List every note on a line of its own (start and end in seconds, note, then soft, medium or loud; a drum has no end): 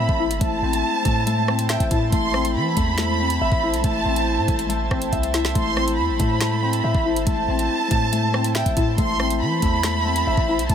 0.00 0.40 A3 medium
0.00 0.63 C4 medium
0.00 0.19 E4 medium
0.00 8.94 E4 medium
0.00 8.94 C5 medium
0.00 1.69 E5 medium
0.00 8.94 A5 medium
0.00 0.37 B5 medium
0.09 0.32 A1 loud
0.09 kick loud
0.19 1.91 E4 medium
0.30 0.40 G1 loud
0.30 closed hi-hat medium
0.41 0.62 A1 loud
0.41 1.04 A3 loud
0.41 1.66 A5 loud
0.41 kick loud
0.41 closed hi-hat medium
0.62 0.83 A1 loud
0.62 1.48 C4 medium
0.73 closed hi-hat medium
1.05 1.77 A2 loud
1.05 1.26 A3 medium
1.05 kick medium
1.05 closed hi-hat medium
1.26 2.12 A3 medium
1.26 closed hi-hat medium
1.48 2.34 C4 medium
1.48 cross-stick loud
1.59 closed hi-hat medium
1.69 3.41 E5 loud
1.69 1.90 G5 medium
1.69 finger snap loud
1.69 snare loud
1.69 closed hi-hat medium
1.80 1.91 A1 loud
1.80 kick loud
1.80 closed hi-hat medium
1.91 2.12 A2 loud
1.91 3.63 E4 medium
1.91 2.11 A5 medium
1.91 kick loud
1.91 closed hi-hat medium
2.12 2.57 A1 loud
2.12 2.77 A3 loud
2.12 2.53 C6 loud
2.12 kick loud
2.12 closed hi-hat medium
2.34 3.20 C4 medium
2.34 cross-stick loud
2.45 closed hi-hat medium
2.55 2.76 E3 loud
2.55 3.80 B5 loud
2.77 3.38 E2 loud
2.77 2.98 A3 medium
2.77 kick medium
2.77 closed hi-hat medium
2.98 3.84 A3 medium
2.98 finger snap loud
2.98 snare loud
2.98 closed hi-hat medium
3.20 4.05 C4 medium
3.30 closed hi-hat medium
3.41 3.51 A1 loud
3.41 5.12 E5 loud
3.52 3.75 A1 loud
3.52 kick loud
3.63 5.34 E4 medium
3.73 3.83 B1 loud
3.73 closed hi-hat medium
3.84 4.04 A1 loud
3.84 4.47 A3 medium
3.84 4.66 A5 loud
3.84 kick loud
3.84 closed hi-hat medium
4.05 4.39 A1 loud
4.05 4.91 C4 medium
4.16 closed hi-hat medium
4.38 4.48 A2 loud
4.48 4.89 A1 loud
4.48 4.68 A3 medium
4.48 kick medium
4.48 closed hi-hat medium
4.59 closed hi-hat medium
4.69 5.54 A3 medium
4.69 closed hi-hat medium
4.91 5.12 A1 loud
4.91 5.76 C4 medium
4.91 kick loud
4.91 cross-stick loud
5.02 closed hi-hat medium
5.12 5.54 C2 loud
5.12 6.84 E5 loud
5.12 kick medium
5.12 closed hi-hat medium
5.23 closed hi-hat medium
5.34 7.05 E4 medium
5.34 5.54 E5 medium
5.34 snare loud
5.34 closed hi-hat medium
5.45 snare loud
5.55 6.00 A1 loud
5.55 6.19 A3 loud
5.55 5.96 C6 loud
5.55 kick loud
5.55 closed hi-hat medium
5.77 6.62 C4 medium
5.77 cross-stick loud
5.88 closed hi-hat medium
5.98 6.10 E2 loud
5.98 7.23 B5 medium
6.09 6.19 A1 loud
6.19 6.81 A2 loud
6.19 6.41 A3 medium
6.19 kick medium
6.19 closed hi-hat medium
6.41 7.26 A3 medium
6.41 finger snap loud
6.41 snare loud
6.41 closed hi-hat medium
6.62 7.48 C4 medium
6.73 closed hi-hat medium
6.84 6.94 A2 loud
6.84 8.55 E5 loud
6.95 7.18 A1 loud
6.95 kick loud
7.05 8.76 E4 medium
7.16 7.26 G1 loud
7.16 closed hi-hat medium
7.27 7.47 A1 loud
7.27 7.90 A3 loud
7.27 8.51 A5 loud
7.27 kick loud
7.27 closed hi-hat medium
7.48 7.69 A1 loud
7.48 8.33 C4 medium
7.59 closed hi-hat medium
7.90 8.63 A2 loud
7.90 8.12 A3 medium
7.90 kick medium
7.90 closed hi-hat medium
8.12 8.98 A3 medium
8.12 closed hi-hat medium
8.34 9.19 C4 medium
8.34 cross-stick loud
8.44 closed hi-hat medium
8.55 10.27 E5 loud
8.55 8.76 G5 medium
8.55 finger snap loud
8.55 snare loud
8.55 closed hi-hat medium
8.66 8.76 A1 loud
8.66 kick loud
8.66 closed hi-hat medium
8.77 8.97 A2 loud
8.77 10.48 E4 medium
8.77 8.97 A5 medium
8.77 kick loud
8.77 closed hi-hat medium
8.98 9.43 A1 loud
8.98 9.62 A3 loud
8.98 10.75 E4 medium
8.98 10.75 C5 medium
8.98 10.75 A5 medium
8.98 9.38 C6 loud
8.98 kick loud
8.98 closed hi-hat medium
9.20 10.05 C4 medium
9.20 cross-stick loud
9.30 closed hi-hat medium
9.41 9.61 E3 loud
9.41 10.66 B5 loud
9.62 10.24 E2 loud
9.62 9.83 A3 medium
9.62 kick medium
9.62 closed hi-hat medium
9.83 10.69 A3 medium
9.83 finger snap loud
9.83 snare loud
9.83 closed hi-hat medium
10.06 10.75 C4 medium
10.16 closed hi-hat medium
10.27 10.37 A1 loud
10.27 10.75 E5 loud
10.37 10.60 A1 loud
10.37 kick loud
10.49 10.75 E4 medium
10.59 10.69 B1 loud
10.59 closed hi-hat medium
10.69 10.75 A1 loud
10.69 10.75 A3 loud
10.69 10.75 A5 loud
10.69 kick loud
10.69 closed hi-hat medium